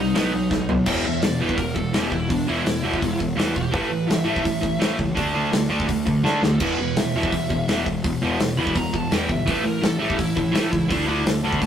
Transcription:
Already playing: C2 C3 D#4
0.00 G3 D#5
0.15 B1 B2 F#3 B3, snare, open hi-hat
0.33 B1 B2 F#3
0.51 B1 B2 F#3, kick, snare
0.69 B1 B2 F#3, floor tom
0.86 E1 E2 B2 E3 G5, kick, crash
1.05 E1 E2 B2 E5
1.22 E1 E2 B2 D5, snare, open hi-hat
1.40 E1 E2 B2 E3 B4
1.49 kick
1.57 E1 E2 B2 A#4, kick, open hi-hat
1.74 E1 E2 B2 A4, kick
1.94 E1 E2 B2 E3 G4, snare, open hi-hat
2.11 E1 E2 B2 E4, kick
2.29 E1 E2 B2 D4, kick, open hi-hat
2.47 E1 E2 B2 E3 E4
2.65 E1 E2 B2, snare, open hi-hat
2.83 E1 E2 B2 E3
2.94 kick
3.01 E1 E2 B2, kick, open hi-hat
3.19 E1 E2 B2, kick
3.36 E2 B2 E3, snare, open hi-hat
3.54 E1 E2 B2 G4, kick
3.71 A1 A2 E3 A3 B4, kick, open hi-hat
3.89 A1 A2 E3
4.07 A1 A2 E3 E5, snare, open hi-hat
4.24 A1 A2 E3 A3 E5
4.36 kick
4.42 A1 A2 E3, kick, open hi-hat
4.61 A1 A2 E3, kick
4.80 A1 A2 E3 A3, snare, open hi-hat
4.97 C#2 A2 E3, kick
5.15 D2 D3 A3 D4, kick, open hi-hat
5.33 D2 D3 A3 D4
5.53 D2 D3 A3, snare, open hi-hat
5.69 D2 D3 A3 D4
5.80 kick
5.88 D2 D3 A3, kick, open hi-hat
6.06 D2 D3 A3, kick
6.24 D3 A3 D4, snare
6.42 D2 D3 A3 A4, snare
6.60 E1 E2 B2 E3 B4, kick, crash
6.78 E1 E2 B2
6.96 E1 E2 B2 E5, snare, open hi-hat
7.15 E1 E2 B2 E3 E5
7.23 kick
7.32 E1 E2 B2, kick, open hi-hat
7.50 E1 E2 B2, kick
7.68 E1 E2 B2 E3, snare, open hi-hat
7.86 E1 E2 B2, kick
8.04 E1 E2 B2, kick, open hi-hat
8.21 E1 E2 B2 E3
8.40 E1 E2 B2, snare, open hi-hat
8.57 E1 E2 B2 E3 B5
8.67 kick
8.75 E1 E2 B2 A#5, kick, open hi-hat
8.93 E1 E2 B2 A5, kick
9.11 E2 B2 E3 G5, snare, open hi-hat
9.29 G1 E2 B2 E5, kick
9.46 A1 A2 E3 A3, kick, open hi-hat
9.50 B4
9.64 A1 A2 E3 A#4
9.82 A1 A2 E3 A4, snare, open hi-hat
9.99 A1 A2 E3 A3 G4
10.10 kick
10.18 A1 A2 E3 E4, kick, open hi-hat
10.36 A1 A2 E3, kick
10.52 A1 A2 E3 A3, snare, open hi-hat
10.71 C#2 A2 E3, kick
10.89 D2 D3 A3 D4, kick, open hi-hat
11.07 D2 D3 A3 D4
11.25 D2 D3 A3, snare, open hi-hat
11.43 D2 D3 A3 D4
11.50 B5, kick
11.61 D2 D3 A3 A5, kick, open hi-hat

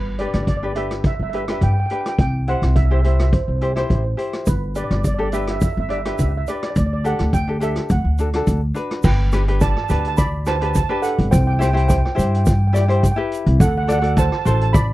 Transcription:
Already playing: G1
0.19 D4 G4 B4 D5, closed hi-hat
0.27 D5
0.33 G1 D5, cross-stick, closed hi-hat
0.43 D5
0.47 D5, kick, closed hi-hat
0.57 D5
0.63 D4 G4 B4 D5
0.75 D4 G4 B4 E5, closed hi-hat
0.91 cross-stick, closed hi-hat
1.04 E5, kick, closed hi-hat
1.15 E5
1.19 G1 E5
1.30 D4 E5, closed hi-hat
1.34 G4 B4 E5
1.45 D4 E5, cross-stick, closed hi-hat
1.49 G4 B4 E5
1.61 G2 G5, kick, closed hi-hat
1.73 G5
1.80 G5
1.86 G5, closed hi-hat
1.91 D4 G4 B4 G5
2.01 G5
2.06 G5, cross-stick, closed hi-hat
2.18 C2 G5, kick, closed hi-hat
2.48 E4 G4 C5 F#5, closed hi-hat
2.62 C2, cross-stick, closed hi-hat
2.76 E5, kick, closed hi-hat
2.86 E5
2.91 E4 G4 C5 E5
2.99 E5
3.04 E4 G4 C5 E5, closed hi-hat
3.14 E5
3.19 E5, cross-stick, closed hi-hat
3.33 C5, kick, closed hi-hat
3.41 C5
3.48 C2 C5
3.56 C5
3.61 E4 G4 C5, closed hi-hat
3.76 E4 G4 C5, cross-stick, closed hi-hat
3.87 A1 C5, kick, closed hi-hat
3.95 C5
4.04 C5
4.17 E4 G4 C5, closed hi-hat
4.33 cross-stick, closed hi-hat
4.46 G1 B4, kick, closed hi-hat, shaker
4.75 D4 G4 B4 D5, closed hi-hat, shaker
4.84 D5
4.91 G1 D5, cross-stick, closed hi-hat
5.00 D5
5.04 D5, kick, closed hi-hat, shaker
5.14 D5
5.18 D4 G4 A4
5.23 D5
5.32 D4 G4 B4 E5, closed hi-hat, shaker
5.41 E5
5.47 E5, cross-stick, closed hi-hat
5.56 E5
5.61 E5, kick, closed hi-hat, shaker
5.73 E5
5.77 G1 E5
5.89 D4 G4 D5 E5, closed hi-hat
5.98 E5
6.05 D4 G4 B4 E5, cross-stick, closed hi-hat
6.14 E5
6.18 C#2 E5, kick, closed hi-hat, shaker
6.29 E5
6.37 E5
6.47 D4 G4 B4 D5, closed hi-hat, shaker
6.55 D5
6.63 D5, cross-stick, closed hi-hat
6.70 D5
6.76 D2 D5, kick, closed hi-hat, shaker
6.86 D5
6.93 D5
7.04 D4 G4 A4 F#5, closed hi-hat, shaker
7.19 D2, cross-stick, closed hi-hat
7.33 G5, kick, closed hi-hat, shaker
7.48 D4 G4 A4
7.60 D4 G4 A4 E5, closed hi-hat, shaker
7.76 cross-stick, closed hi-hat
7.90 D2 F#5, kick, closed hi-hat, shaker
8.04 D2
8.18 D4 F#4 A4, closed hi-hat, shaker
8.33 D4 F#4 A4, cross-stick, closed hi-hat
8.47 D2, kick, closed hi-hat, shaker
8.74 D4 F#4 B4, closed hi-hat, shaker
8.91 cross-stick, closed hi-hat
9.03 G1 B4 G5, kick, crash, shaker
9.32 D4 G4 B4, cross-stick, closed hi-hat, shaker
9.48 D4 G4 B4, closed hi-hat
9.61 D5 A5, kick, closed hi-hat, shaker
9.70 A5
9.77 A5, cross-stick
9.84 A5
9.89 D2 D4 G4 B4 A5, closed hi-hat, shaker
10.00 A5
10.05 A5, closed hi-hat
10.17 D5 B5, kick, closed hi-hat, shaker
10.46 D4 G4 B4 C5 A5, cross-stick, closed hi-hat, shaker
10.55 A5
10.61 D4 G4 B4 A5, closed hi-hat
10.70 A5
10.75 A5, kick, closed hi-hat, shaker
10.83 A5
10.89 D4 G4 B4 A5
11.02 A4 F#5, closed hi-hat, shaker
11.19 G1, closed hi-hat
11.31 C2 C5 G5, kick, closed hi-hat, shaker
11.38 G5
11.47 G5
11.53 G5
11.59 E4 G4 C5 G5, cross-stick, closed hi-hat, shaker
11.68 G5
11.73 E4 G4 C5 G5, closed hi-hat
11.88 C5 G5, kick, closed hi-hat, shaker
11.97 G5
12.05 G5, cross-stick
12.12 E4 G4 C5 G5
12.17 G2 G5, closed hi-hat, shaker
12.27 G5
12.34 G5, closed hi-hat
12.44 G5, kick, closed hi-hat, shaker
12.50 G5
12.58 G5
12.67 G5
12.73 E4 G4 D5 G5, cross-stick, closed hi-hat, shaker
12.81 G5
12.88 E4 G4 C5 G5, closed hi-hat
12.96 G5
13.03 G5, kick, closed hi-hat, shaker
13.11 G5
13.16 E4 G4 B4
13.32 closed hi-hat, shaker
13.46 C2, closed hi-hat
13.60 D2 A4 F#5, kick, closed hi-hat, shaker
13.68 F#5
13.78 F#5
13.83 F#5
13.87 F#4 A4 D5, cross-stick, closed hi-hat, shaker
13.92 F#5
13.99 F#4 A4 F#5
14.03 D5 F#5, closed hi-hat
14.16 C5 A5, kick, closed hi-hat, shaker
14.25 A5
14.32 A5, cross-stick
14.39 A5
14.45 A1 F#4 A4 C5 A5, closed hi-hat, shaker
14.54 A5
14.61 A5, closed hi-hat
14.73 D5 B5, kick, closed hi-hat, shaker

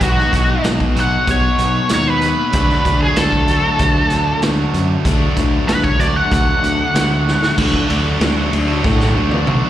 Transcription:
0.01 B1 B2 F#3 B3 D#4 F#4, kick, closed hi-hat
0.18 snare
0.33 B1, kick, snare, closed hi-hat
0.64 B1, snare, closed hi-hat
0.80 kick
0.96 B1 B2 F#3 B3 D#4 F#4, closed hi-hat
1.00 F#5
1.27 B1 C#5, kick, closed hi-hat
1.58 B1, closed hi-hat
1.89 D#2 B2 F#3 B3 D#4 F#4, snare, closed hi-hat
1.94 C#5
2.10 B4
2.21 closed hi-hat
2.53 D2 D3 F#3 A3, kick, closed hi-hat
2.57 D4 F#4
2.70 snare
2.85 D2, kick, closed hi-hat
3.02 G#4
3.16 D2 A4, snare, closed hi-hat
3.32 kick
3.48 A3 D4 F#4, closed hi-hat
3.52 D3 F#3
3.79 D2, kick, closed hi-hat
4.10 D2, closed hi-hat
4.42 D2 D3 F#3 A3 D4 F#4, snare, closed hi-hat
4.74 F#2, closed hi-hat
5.04 D2 D3 F#3 A3 D4 F#4, kick, closed hi-hat
5.37 D2, kick, closed hi-hat
5.68 D2 B4, snare, closed hi-hat
5.83 C#5, kick
5.99 D2 D3 F#3 A3 D4 F#4 D5, closed hi-hat
6.16 F#5
6.32 D2 F#5, kick, closed hi-hat
6.63 D2, closed hi-hat
6.94 D2 D3 F#3 A3 D4 F#4, snare, closed hi-hat
7.28 snare
7.43 snare
7.56 D2 D3 F#3 A3 D4 F#4 D5, kick, crash
7.74 A3 D4 F#4, kick
7.88 D2 D3 F#3 A3 D4 F#4, ride
8.04 F#3 A3 D4
8.20 D2 D3 F#3 A3 D4 F#4, snare, ride
8.37 A3 D4 F#4
8.51 D2 D3 F#3 A3 D4, muted overdriven electric guitar stroke, ride
8.68 F#3 A3 D4 F#4
8.82 A2 D3 F#3 A3 D4, kick, snare
8.99 F#3 A3 D4, snare
9.15 D2 D3 A3 D4 F#4
9.31 F#3 A3 D4, high tom
9.46 B1 D3 F#3 A3 D4 F#4, mid tom
9.63 A3 D4 F#4

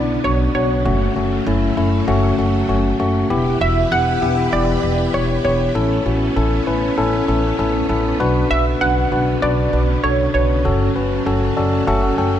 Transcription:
Already playing: B1 C#3 D3 B3 D4 E4 D5
0.24 B1 B3 D4 F#4 C#5
0.55 B1 B3 D4 F#4 C#5
0.85 F#1 F#3 A3 C#4 F#4
1.16 F#1 A3 C#4 F#4
1.47 F#1 A3 C#4 E4
1.77 F#1 A3 C#4 E4
2.08 F#1 A3 C#4 F#4
2.38 F#1 A3 C#4 F#4
2.69 F#1 A3 C#4 F#4
3.00 F#1 A3 C#4 F#4
3.30 E1 E3 B3 E4 G4 B4
3.61 E1 B3 E4 F#4 E5
3.91 E1 B3 E4 G4 F#5
4.22 E1 B3 E4 G4
4.52 E1 B3 E4 G4 D5
4.83 E1 B3 E4 G4
5.14 E1 B3 E4 G4 C#5
5.44 E1 B3 E4 G4 C#5
5.75 A1 A3 B3 C#4 E4 A4
6.06 A1 C#4 E4 F#4
6.36 A1 C#4 E4 A4
6.67 A1 C#4 E4 B4
6.97 A1 C#4 E4 A4
7.28 A1 C#4 E4 A4
7.59 A1 C#4 E4 A4
7.89 A1 C#4 E4 A4
8.20 B1 C#3 D3 D4 F#4 B4
8.51 B1 D4 F#4 B4 E5
8.81 B1 D4 F#4 B4 F#5
9.12 B1 D4 F#4 B4
9.42 B1 D4 F#4 B4 D5
9.73 B1 D4 F#4 B4
10.03 B1 D4 F#4 A4 C#5
10.34 B1 D4 F#4 B4 C#5
10.65 F#1 F#3 A3 C#4 F#4 A4
10.96 F#1 C#4 F#4 B4
11.26 F#1 C#4 F#4 A4
11.57 F#1 C#4 F#4 A4 D5
11.87 F#1 C#4 F#4 A4 E5
12.03 F#5
12.18 F#1 C#4 F#4 A4 G5

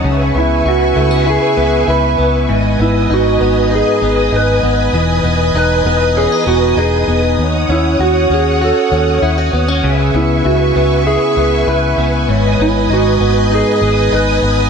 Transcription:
Already playing: F#3 C#4 D#4 A4
0.04 C#2 C#3 B4 E5 G#5 C#6
0.35 C#2 B3 E4
0.65 C#2 E4 F#4
0.96 C#2 A3
1.11 B3
1.26 E4 G#4
1.57 C#2 B3
1.88 C#2 E4 B4
2.18 C#2 B3
2.49 G#1 G#2 B4 D#5 G#5 D#6
2.80 G#1 B3 E4
3.10 G#1 D#4 F#4
3.41 G#1 B3
3.71 D#4 G#4
4.02 G#1 B3
4.32 G#1 D#4 B4
4.63 G#1 B3
4.93 E1 E3 D#5
5.23 E1 B3
5.54 E1 D#4 B4
5.85 E1 B3 B4
6.17 C#4 G#4
6.32 D#4
6.47 E1 B3 F#4
6.77 E1 D#4 G#4
7.08 E1 B3
7.38 D#2 C#5 F#5
7.69 D#2 C#4 E4
7.99 D#2 F#4
8.30 D#2 C#4
8.34 G#4
8.61 F#4 A4
8.92 D#2 C#4
9.22 D#2 E4
9.38 F#4
9.53 D#2 B3
9.68 C#4
9.83 C#2 C#3 G#4 B4 E5 G#5 C#6
10.14 C#2 B3 E4
10.45 C#2 E4 F#4
10.76 C#2 B3
11.07 E4 G#4
11.37 C#2 B3
11.67 C#2 E4 B4
11.98 C#2 B3
12.28 G#1 G#2 C#5 D#5 D#6
12.59 G#1 B3 E4
12.90 G#1 D#4 F#4
13.21 G#1 B3
13.51 D#4 G#4
13.82 G#1 B3
14.12 G#1 D#4 B4
14.42 G#1 B3

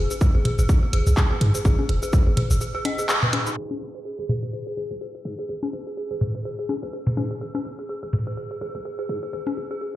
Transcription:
0.11 G#4, cabasa
0.21 G#4, kick, cabasa
0.35 G#1 G#4
0.45 G#4, closed hi-hat, mid tom
0.59 G#1 G#4, cabasa
0.69 G#4, kick, cabasa
0.83 G#4
0.93 G#1 G#4, closed hi-hat
1.07 B1 G#4, cabasa
1.17 G#4, kick, clap, cabasa
1.31 G#4
1.41 G#2 G#4, closed hi-hat
1.55 G#4, cabasa
1.65 G#1 G#4, kick, cabasa
1.79 G#4, high conga
1.89 F#1 G#4, closed hi-hat
2.03 G#4, cabasa
2.13 G#4, kick, cabasa
2.27 G#1 G#4
2.37 G#4, closed hi-hat, mid tom
2.51 G#1 G#4, cabasa
2.61 G#4, cabasa
2.75 G#4
2.85 D#5, closed hi-hat, high conga
2.99 G#4, cabasa
3.09 G#4, clap, cabasa
3.23 B4, mid tom
3.33 G#4, closed hi-hat, high conga
3.47 D#4, cabasa
3.57 G#1 G#4
3.71 G#4, high conga
3.81 F#1 G#4
3.95 G#4
4.05 G#4
4.19 G#1 G#4
4.29 G#4, mid tom
4.43 G#1 G#4
4.53 G#4
4.67 G#4
4.77 G#1 G#4
4.91 B1 G#4
5.01 G#4
5.15 G#4
5.25 G#2 G#4
5.39 G#4
5.49 G#1 G#4
5.63 G#4, high conga
5.73 F#1 G#4
5.87 G#4
5.97 G#4
6.11 G#1 G#4
6.21 G#4, mid tom
6.35 G#1 G#4
6.45 G#4
6.59 G#4
6.69 G#1 G#4, high conga
6.83 B1 G#4
6.93 G#4
7.07 G#4, mid tom
7.17 G#2 G#4, high conga
7.31 G#4
7.41 G#1 G#4
7.55 G#4, high conga
7.65 F#1 G#4
7.79 G#4
7.89 G#4
8.03 G#1 G#4
8.13 G#4, mid tom
8.27 G#1 G#4
8.37 G#4
8.51 G#4
8.61 G#1 G#4
8.75 B1 G#4
8.85 G#4
8.99 G#4
9.09 G#2 G#4
9.23 G#4
9.33 G#1 G#4
9.47 G#4, high conga
9.57 F#1 G#4
9.71 G#4
9.81 G#4

